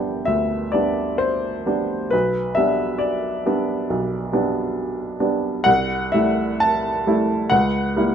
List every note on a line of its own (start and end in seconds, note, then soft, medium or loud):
0.00 2.15 G1 soft
0.00 0.74 G3 soft
0.00 0.74 B3 soft
0.00 0.74 D4 soft
0.00 0.72 D5 soft
0.00 0.25 E5 medium
0.00 0.26 G5 medium
0.25 0.72 D2 soft
0.25 0.72 E5 medium
0.72 1.63 G3 soft
0.72 1.63 B3 soft
0.72 1.63 D4 soft
0.72 1.19 D5 medium
1.18 2.12 C5 medium
1.66 2.08 G3 soft
1.66 2.09 B3 soft
1.66 2.09 D4 soft
2.10 2.56 B1 soft
2.10 2.56 B4 medium
2.55 3.42 G3 soft
2.55 3.42 B3 soft
2.55 3.42 D4 soft
2.55 3.00 E5 medium
2.98 5.19 D5 medium
3.46 3.86 G3 soft
3.46 3.87 B3 soft
3.46 3.87 D4 soft
3.90 4.32 B1 soft
4.33 5.16 G3 soft
4.33 5.17 B3 soft
4.33 5.17 D4 soft
5.20 5.62 G3 soft
5.20 5.62 B3 soft
5.20 5.62 D4 soft
5.64 6.13 C2 medium
5.64 6.13 F#5 medium
6.12 7.03 G3 soft
6.12 7.03 A3 soft
6.12 7.03 E4 soft
6.12 6.61 E5 medium
6.60 7.51 A5 medium
7.07 7.47 G3 soft
7.07 7.48 A3 soft
7.07 7.48 E4 soft
7.50 7.95 C#2 medium
7.50 8.15 F#5 medium
7.96 8.15 G3 soft
7.96 8.15 A#3 soft
7.96 8.15 E4 soft